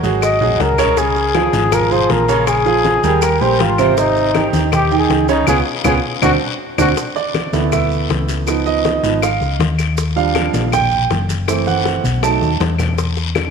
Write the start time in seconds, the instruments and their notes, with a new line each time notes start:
0.03 fingered electric bass G#1, grand piano F#3 F#4 G#4, short guiro, maracas
0.22 trumpet D#5, high bongo, long guiro, claves, maracas
0.41 fingered electric bass A#1, grand piano F#3 F#4 G#4, high bongo, maracas
0.47 low conga
0.59 fingered electric bass C#2, trumpet A#4, high bongo, low bongo, short guiro, maracas
0.72 low conga
0.78 grand piano C#3 C#4 C#5, high bongo, short guiro, claves, maracas
0.85 low conga
0.97 grand piano C#3 C#4 C#5, trumpet G#4, high bongo, high conga, long guiro, maracas
1.16 high bongo, high conga, maracas
1.34 grand piano F3 F4 G#4, high bongo, high conga, short guiro, claves, maracas
1.53 fingered electric bass G#1, high bongo, high conga, short guiro, maracas
1.72 grand piano F3 F4 G#4, trumpet A#4, high bongo, high conga, low conga, long guiro, claves, maracas
1.91 grand piano F3 F4 G#4, trumpet C5, high conga, low conga, maracas
2.09 fingered electric bass A#1, trumpet A#4, high bongo, low bongo, high conga, short guiro, maracas
2.28 grand piano C#3 C#4 C#5, high bongo, short guiro, maracas
2.47 trumpet G#4, high bongo, high conga, long guiro, claves, maracas
2.66 grand piano F3 F4 G#4, high bongo, high conga, maracas
2.85 high bongo, high conga, short guiro, maracas
3.03 fingered electric bass D#2, grand piano G3 G4 A#4, short guiro, maracas
3.22 trumpet A#4, high bongo, high conga, long guiro, claves, maracas
3.41 fingered electric bass A#1, grand piano G3 G4 A#4, trumpet C5, high bongo, high conga, maracas
3.59 fingered electric bass G#1, trumpet F4, high bongo, low bongo, high conga, short guiro, maracas
3.78 grand piano C3 C4 C5, high bongo, high conga, short guiro, claves, maracas
3.97 grand piano C3 C4 C5, trumpet D#4, high bongo, high conga, long guiro, maracas
4.16 high bongo, maracas
4.34 grand piano D#3 D#4 G4, high bongo, high conga, short guiro, claves, maracas
4.53 fingered electric bass D#2, high bongo, high conga, short guiro, maracas
4.72 grand piano D#3 D#4 G4, trumpet G4, high bongo, high conga, low conga, long guiro, claves, maracas
4.91 grand piano D#3 D#4 G5, high conga, maracas
4.98 trumpet G#4
5.09 fingered electric bass C#2, high bongo, low bongo, high conga, short guiro, maracas
5.28 grand piano C#3 C#4 C#5, trumpet D#4, high bongo, high conga, short guiro, maracas
5.47 fingered electric bass C#2, grand piano B3 C#4 F4, trumpet G#4, low bongo, low conga, long guiro, claves, maracas
5.84 fingered electric bass C#2, grand piano B3 C#4 F4, trumpet G#4, low bongo, low conga, claves, maracas
6.22 fingered electric bass D2, grand piano C4 D4 F#4, trumpet F#4, low bongo, low conga, long guiro, claves, maracas
6.78 fingered electric bass D2, grand piano C4 D4 F#4, trumpet F#4, low bongo, low conga, long guiro, claves, maracas
6.97 high bongo, high conga, long guiro, maracas
7.16 grand piano D5, high bongo, high conga, maracas
7.34 high bongo, high conga, short guiro, claves, maracas
7.53 fingered electric bass D2, grand piano A3 B3 E4, high bongo, high conga, short guiro, maracas
7.72 grand piano E5, high bongo, high conga, low conga, long guiro, claves, maracas
7.91 high conga, maracas
8.09 fingered electric bass C#2, high bongo, low bongo, high conga, short guiro, maracas
8.28 high bongo, high conga, short guiro, maracas
8.47 grand piano F3 B3 D#4, high bongo, long guiro, claves, maracas
8.66 grand piano D#5, high bongo, high conga, maracas
8.85 high bongo, high conga, short guiro, maracas
9.03 fingered electric bass G#1, grand piano F3 B3 D#4, short guiro, maracas
9.22 grand piano F5, high bongo, high conga, long guiro, claves, maracas
9.41 fingered electric bass C#2, high bongo, high conga, maracas
9.59 fingered electric bass D#2, high bongo, low bongo, high conga, short guiro, maracas
9.78 high bongo, short guiro, claves, maracas
9.97 high bongo, high conga, long guiro, maracas
10.16 grand piano F3 G3 D4 F5, high bongo, high conga, maracas
10.35 high bongo, high conga, short guiro, claves, maracas
10.53 fingered electric bass A#1, high bongo, high conga, short guiro, maracas
10.72 grand piano G5, high bongo, high conga, low conga, long guiro, claves, maracas
10.92 high conga, low conga, maracas
11.10 fingered electric bass F#1, high bongo, low bongo, high conga, short guiro, maracas
11.29 high bongo, high conga, short guiro, maracas
11.48 grand piano E3 A3 C4, high bongo, high conga, long guiro, claves, maracas
11.67 grand piano F#5, high bongo, high conga, maracas
11.86 high bongo, high conga, short guiro, maracas
12.04 fingered electric bass B1, low conga, short guiro, maracas
12.22 grand piano F#3 A3 D#4 A5, high bongo, long guiro, claves, maracas
12.41 fingered electric bass D#2, high bongo, low conga, maracas
12.60 fingered electric bass E2, high bongo, low bongo, low conga, short guiro, maracas
12.79 high bongo, low conga, short guiro, claves, maracas
12.98 high bongo, high conga, long guiro, maracas
13.17 high bongo, high conga, maracas
13.35 high bongo, high conga, short guiro, claves, maracas